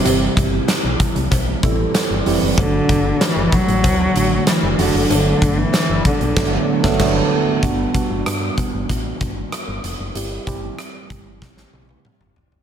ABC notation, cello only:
X:1
M:4/4
L:1/16
Q:1/4=95
K:G
V:1 name="Cello" clef=bass
C,2 z12 z2 | D,4 E,2 F,6 E,2 D,2 | D,3 E,3 D,6 z4 | z16 |
z16 |]